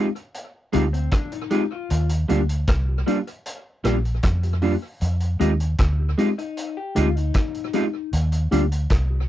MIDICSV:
0, 0, Header, 1, 6, 480
1, 0, Start_track
1, 0, Tempo, 778210
1, 1174, Time_signature, 4, 2, 24, 8
1, 5729, End_track
2, 0, Start_track
2, 0, Title_t, "Clean electric guitar"
2, 0, Program_c, 0, 27
2, 448, Note_on_c, 0, 56, 87
2, 455, Note_on_c, 0, 63, 81
2, 460, Note_on_c, 0, 65, 102
2, 510, Note_off_c, 0, 56, 0
2, 513, Note_off_c, 0, 63, 0
2, 516, Note_off_c, 0, 65, 0
2, 929, Note_on_c, 0, 56, 73
2, 935, Note_on_c, 0, 63, 72
2, 941, Note_on_c, 0, 65, 80
2, 991, Note_off_c, 0, 56, 0
2, 993, Note_off_c, 0, 63, 0
2, 996, Note_off_c, 0, 65, 0
2, 1409, Note_on_c, 0, 55, 77
2, 1414, Note_on_c, 0, 62, 80
2, 1421, Note_on_c, 0, 65, 79
2, 1470, Note_off_c, 0, 55, 0
2, 1473, Note_off_c, 0, 62, 0
2, 1476, Note_off_c, 0, 65, 0
2, 1891, Note_on_c, 0, 55, 75
2, 1896, Note_on_c, 0, 62, 82
2, 1901, Note_on_c, 0, 65, 73
2, 1951, Note_off_c, 0, 55, 0
2, 1954, Note_off_c, 0, 62, 0
2, 1956, Note_off_c, 0, 65, 0
2, 2369, Note_on_c, 0, 55, 95
2, 2376, Note_on_c, 0, 62, 75
2, 2381, Note_on_c, 0, 65, 100
2, 2430, Note_off_c, 0, 55, 0
2, 2434, Note_off_c, 0, 62, 0
2, 2436, Note_off_c, 0, 65, 0
2, 2850, Note_on_c, 0, 55, 70
2, 2855, Note_on_c, 0, 62, 84
2, 2862, Note_on_c, 0, 65, 75
2, 2911, Note_off_c, 0, 55, 0
2, 2913, Note_off_c, 0, 62, 0
2, 2916, Note_off_c, 0, 65, 0
2, 3329, Note_on_c, 0, 56, 70
2, 3335, Note_on_c, 0, 63, 79
2, 3339, Note_on_c, 0, 65, 81
2, 3390, Note_off_c, 0, 56, 0
2, 3393, Note_off_c, 0, 63, 0
2, 3395, Note_off_c, 0, 65, 0
2, 3810, Note_on_c, 0, 56, 66
2, 3816, Note_on_c, 0, 63, 64
2, 3821, Note_on_c, 0, 65, 78
2, 3871, Note_off_c, 0, 56, 0
2, 3874, Note_off_c, 0, 63, 0
2, 3876, Note_off_c, 0, 65, 0
2, 4294, Note_on_c, 0, 56, 72
2, 4299, Note_on_c, 0, 63, 82
2, 4304, Note_on_c, 0, 65, 90
2, 4352, Note_off_c, 0, 56, 0
2, 4355, Note_off_c, 0, 63, 0
2, 4358, Note_off_c, 0, 65, 0
2, 4772, Note_on_c, 0, 56, 75
2, 4778, Note_on_c, 0, 63, 89
2, 4782, Note_on_c, 0, 65, 97
2, 4831, Note_off_c, 0, 56, 0
2, 4834, Note_off_c, 0, 63, 0
2, 4836, Note_off_c, 0, 65, 0
2, 5254, Note_on_c, 0, 55, 76
2, 5260, Note_on_c, 0, 62, 88
2, 5263, Note_on_c, 0, 65, 78
2, 5312, Note_off_c, 0, 55, 0
2, 5315, Note_off_c, 0, 62, 0
2, 5317, Note_off_c, 0, 65, 0
2, 5729, End_track
3, 0, Start_track
3, 0, Title_t, "Clean electric guitar"
3, 0, Program_c, 1, 27
3, 574, Note_on_c, 1, 60, 67
3, 687, Note_off_c, 1, 60, 0
3, 693, Note_on_c, 1, 62, 75
3, 817, Note_off_c, 1, 62, 0
3, 817, Note_on_c, 1, 63, 73
3, 1059, Note_off_c, 1, 63, 0
3, 1059, Note_on_c, 1, 65, 76
3, 1286, Note_off_c, 1, 65, 0
3, 3938, Note_on_c, 1, 63, 69
3, 4165, Note_off_c, 1, 63, 0
3, 4176, Note_on_c, 1, 67, 84
3, 4288, Note_off_c, 1, 67, 0
3, 4292, Note_on_c, 1, 65, 74
3, 4414, Note_off_c, 1, 65, 0
3, 4414, Note_on_c, 1, 63, 68
3, 4988, Note_off_c, 1, 63, 0
3, 5729, End_track
4, 0, Start_track
4, 0, Title_t, "Tine electric piano"
4, 0, Program_c, 2, 4
4, 452, Note_on_c, 2, 56, 86
4, 452, Note_on_c, 2, 60, 85
4, 453, Note_on_c, 2, 63, 87
4, 454, Note_on_c, 2, 67, 103
4, 535, Note_off_c, 2, 56, 0
4, 535, Note_off_c, 2, 60, 0
4, 535, Note_off_c, 2, 63, 0
4, 536, Note_off_c, 2, 67, 0
4, 930, Note_on_c, 2, 56, 75
4, 930, Note_on_c, 2, 60, 67
4, 933, Note_on_c, 2, 63, 77
4, 933, Note_on_c, 2, 67, 96
4, 1014, Note_off_c, 2, 56, 0
4, 1014, Note_off_c, 2, 60, 0
4, 1015, Note_off_c, 2, 63, 0
4, 1016, Note_off_c, 2, 67, 0
4, 1411, Note_on_c, 2, 58, 90
4, 1412, Note_on_c, 2, 62, 87
4, 1413, Note_on_c, 2, 65, 76
4, 1416, Note_on_c, 2, 67, 93
4, 1494, Note_off_c, 2, 58, 0
4, 1495, Note_off_c, 2, 62, 0
4, 1495, Note_off_c, 2, 65, 0
4, 1497, Note_off_c, 2, 67, 0
4, 1775, Note_on_c, 2, 67, 42
4, 1776, Note_on_c, 2, 65, 33
4, 1823, Note_off_c, 2, 65, 0
4, 1823, Note_off_c, 2, 67, 0
4, 1891, Note_on_c, 2, 58, 84
4, 1892, Note_on_c, 2, 62, 82
4, 1892, Note_on_c, 2, 65, 77
4, 1894, Note_on_c, 2, 67, 87
4, 1974, Note_off_c, 2, 58, 0
4, 1975, Note_off_c, 2, 62, 0
4, 1975, Note_off_c, 2, 65, 0
4, 1976, Note_off_c, 2, 67, 0
4, 2369, Note_on_c, 2, 58, 79
4, 2370, Note_on_c, 2, 65, 83
4, 2371, Note_on_c, 2, 62, 79
4, 2373, Note_on_c, 2, 67, 101
4, 2454, Note_off_c, 2, 58, 0
4, 2454, Note_off_c, 2, 62, 0
4, 2454, Note_off_c, 2, 65, 0
4, 2455, Note_off_c, 2, 67, 0
4, 2734, Note_on_c, 2, 65, 42
4, 2734, Note_on_c, 2, 67, 46
4, 2782, Note_off_c, 2, 65, 0
4, 2782, Note_off_c, 2, 67, 0
4, 2848, Note_on_c, 2, 58, 81
4, 2849, Note_on_c, 2, 62, 72
4, 2850, Note_on_c, 2, 65, 71
4, 2852, Note_on_c, 2, 67, 83
4, 2933, Note_off_c, 2, 58, 0
4, 2933, Note_off_c, 2, 62, 0
4, 2934, Note_off_c, 2, 65, 0
4, 2935, Note_off_c, 2, 67, 0
4, 3330, Note_on_c, 2, 56, 88
4, 3330, Note_on_c, 2, 60, 82
4, 3331, Note_on_c, 2, 63, 87
4, 3334, Note_on_c, 2, 67, 99
4, 3413, Note_off_c, 2, 56, 0
4, 3414, Note_off_c, 2, 60, 0
4, 3414, Note_off_c, 2, 63, 0
4, 3415, Note_off_c, 2, 67, 0
4, 3694, Note_on_c, 2, 67, 39
4, 3695, Note_on_c, 2, 63, 39
4, 3742, Note_off_c, 2, 67, 0
4, 3743, Note_off_c, 2, 63, 0
4, 3812, Note_on_c, 2, 56, 78
4, 3813, Note_on_c, 2, 60, 78
4, 3813, Note_on_c, 2, 63, 77
4, 3814, Note_on_c, 2, 67, 90
4, 3895, Note_off_c, 2, 56, 0
4, 3895, Note_off_c, 2, 60, 0
4, 3895, Note_off_c, 2, 63, 0
4, 3895, Note_off_c, 2, 67, 0
4, 4289, Note_on_c, 2, 56, 98
4, 4291, Note_on_c, 2, 63, 81
4, 4292, Note_on_c, 2, 60, 80
4, 4293, Note_on_c, 2, 67, 103
4, 4373, Note_off_c, 2, 56, 0
4, 4374, Note_off_c, 2, 60, 0
4, 4374, Note_off_c, 2, 63, 0
4, 4375, Note_off_c, 2, 67, 0
4, 4772, Note_on_c, 2, 56, 76
4, 4773, Note_on_c, 2, 60, 69
4, 4773, Note_on_c, 2, 63, 68
4, 4775, Note_on_c, 2, 67, 88
4, 4854, Note_off_c, 2, 56, 0
4, 4855, Note_off_c, 2, 60, 0
4, 4855, Note_off_c, 2, 63, 0
4, 4856, Note_off_c, 2, 67, 0
4, 5251, Note_on_c, 2, 58, 83
4, 5251, Note_on_c, 2, 62, 82
4, 5254, Note_on_c, 2, 65, 74
4, 5254, Note_on_c, 2, 67, 106
4, 5334, Note_off_c, 2, 58, 0
4, 5334, Note_off_c, 2, 62, 0
4, 5335, Note_off_c, 2, 65, 0
4, 5335, Note_off_c, 2, 67, 0
4, 5613, Note_on_c, 2, 67, 42
4, 5614, Note_on_c, 2, 65, 37
4, 5661, Note_off_c, 2, 67, 0
4, 5662, Note_off_c, 2, 65, 0
4, 5729, End_track
5, 0, Start_track
5, 0, Title_t, "Fingered electric bass"
5, 0, Program_c, 3, 33
5, 460, Note_on_c, 3, 38, 86
5, 666, Note_off_c, 3, 38, 0
5, 1178, Note_on_c, 3, 39, 105
5, 1385, Note_off_c, 3, 39, 0
5, 1420, Note_on_c, 3, 38, 86
5, 1627, Note_off_c, 3, 38, 0
5, 1654, Note_on_c, 3, 36, 78
5, 1863, Note_off_c, 3, 36, 0
5, 2374, Note_on_c, 3, 34, 92
5, 2583, Note_off_c, 3, 34, 0
5, 2616, Note_on_c, 3, 41, 100
5, 2930, Note_off_c, 3, 41, 0
5, 3095, Note_on_c, 3, 41, 101
5, 3303, Note_off_c, 3, 41, 0
5, 3334, Note_on_c, 3, 39, 84
5, 3543, Note_off_c, 3, 39, 0
5, 3574, Note_on_c, 3, 38, 88
5, 3782, Note_off_c, 3, 38, 0
5, 4299, Note_on_c, 3, 38, 90
5, 4505, Note_off_c, 3, 38, 0
5, 5015, Note_on_c, 3, 39, 104
5, 5223, Note_off_c, 3, 39, 0
5, 5256, Note_on_c, 3, 38, 83
5, 5463, Note_off_c, 3, 38, 0
5, 5495, Note_on_c, 3, 36, 82
5, 5703, Note_off_c, 3, 36, 0
5, 5729, End_track
6, 0, Start_track
6, 0, Title_t, "Drums"
6, 97, Note_on_c, 9, 42, 42
6, 159, Note_off_c, 9, 42, 0
6, 212, Note_on_c, 9, 42, 72
6, 274, Note_off_c, 9, 42, 0
6, 450, Note_on_c, 9, 42, 72
6, 511, Note_off_c, 9, 42, 0
6, 578, Note_on_c, 9, 42, 43
6, 640, Note_off_c, 9, 42, 0
6, 687, Note_on_c, 9, 42, 81
6, 692, Note_on_c, 9, 36, 106
6, 693, Note_on_c, 9, 37, 95
6, 748, Note_off_c, 9, 42, 0
6, 754, Note_off_c, 9, 36, 0
6, 755, Note_off_c, 9, 37, 0
6, 813, Note_on_c, 9, 42, 55
6, 874, Note_off_c, 9, 42, 0
6, 929, Note_on_c, 9, 42, 79
6, 990, Note_off_c, 9, 42, 0
6, 1173, Note_on_c, 9, 42, 75
6, 1234, Note_off_c, 9, 42, 0
6, 1291, Note_on_c, 9, 42, 62
6, 1352, Note_off_c, 9, 42, 0
6, 1414, Note_on_c, 9, 42, 59
6, 1476, Note_off_c, 9, 42, 0
6, 1536, Note_on_c, 9, 42, 53
6, 1598, Note_off_c, 9, 42, 0
6, 1649, Note_on_c, 9, 42, 72
6, 1653, Note_on_c, 9, 36, 101
6, 1657, Note_on_c, 9, 37, 96
6, 1711, Note_off_c, 9, 42, 0
6, 1714, Note_off_c, 9, 36, 0
6, 1719, Note_off_c, 9, 37, 0
6, 1897, Note_on_c, 9, 42, 63
6, 1958, Note_off_c, 9, 42, 0
6, 2019, Note_on_c, 9, 42, 44
6, 2080, Note_off_c, 9, 42, 0
6, 2132, Note_on_c, 9, 42, 72
6, 2194, Note_off_c, 9, 42, 0
6, 2372, Note_on_c, 9, 42, 67
6, 2376, Note_on_c, 9, 37, 66
6, 2433, Note_off_c, 9, 42, 0
6, 2438, Note_off_c, 9, 37, 0
6, 2498, Note_on_c, 9, 42, 48
6, 2560, Note_off_c, 9, 42, 0
6, 2607, Note_on_c, 9, 42, 86
6, 2613, Note_on_c, 9, 36, 97
6, 2614, Note_on_c, 9, 37, 93
6, 2669, Note_off_c, 9, 42, 0
6, 2674, Note_off_c, 9, 36, 0
6, 2675, Note_off_c, 9, 37, 0
6, 2733, Note_on_c, 9, 42, 53
6, 2795, Note_off_c, 9, 42, 0
6, 2849, Note_on_c, 9, 46, 50
6, 2910, Note_off_c, 9, 46, 0
6, 3089, Note_on_c, 9, 42, 76
6, 3151, Note_off_c, 9, 42, 0
6, 3209, Note_on_c, 9, 42, 52
6, 3271, Note_off_c, 9, 42, 0
6, 3334, Note_on_c, 9, 42, 60
6, 3396, Note_off_c, 9, 42, 0
6, 3454, Note_on_c, 9, 42, 52
6, 3516, Note_off_c, 9, 42, 0
6, 3567, Note_on_c, 9, 42, 82
6, 3572, Note_on_c, 9, 36, 92
6, 3576, Note_on_c, 9, 37, 92
6, 3629, Note_off_c, 9, 42, 0
6, 3633, Note_off_c, 9, 36, 0
6, 3637, Note_off_c, 9, 37, 0
6, 3815, Note_on_c, 9, 42, 66
6, 3877, Note_off_c, 9, 42, 0
6, 3938, Note_on_c, 9, 42, 44
6, 4000, Note_off_c, 9, 42, 0
6, 4052, Note_on_c, 9, 42, 73
6, 4114, Note_off_c, 9, 42, 0
6, 4291, Note_on_c, 9, 42, 68
6, 4352, Note_off_c, 9, 42, 0
6, 4420, Note_on_c, 9, 42, 41
6, 4482, Note_off_c, 9, 42, 0
6, 4527, Note_on_c, 9, 42, 82
6, 4533, Note_on_c, 9, 36, 107
6, 4534, Note_on_c, 9, 37, 93
6, 4589, Note_off_c, 9, 42, 0
6, 4595, Note_off_c, 9, 36, 0
6, 4595, Note_off_c, 9, 37, 0
6, 4654, Note_on_c, 9, 42, 51
6, 4715, Note_off_c, 9, 42, 0
6, 4769, Note_on_c, 9, 42, 68
6, 4831, Note_off_c, 9, 42, 0
6, 5012, Note_on_c, 9, 42, 74
6, 5074, Note_off_c, 9, 42, 0
6, 5131, Note_on_c, 9, 42, 59
6, 5193, Note_off_c, 9, 42, 0
6, 5255, Note_on_c, 9, 42, 59
6, 5317, Note_off_c, 9, 42, 0
6, 5376, Note_on_c, 9, 42, 53
6, 5438, Note_off_c, 9, 42, 0
6, 5488, Note_on_c, 9, 42, 81
6, 5493, Note_on_c, 9, 36, 92
6, 5497, Note_on_c, 9, 37, 93
6, 5550, Note_off_c, 9, 42, 0
6, 5554, Note_off_c, 9, 36, 0
6, 5558, Note_off_c, 9, 37, 0
6, 5729, End_track
0, 0, End_of_file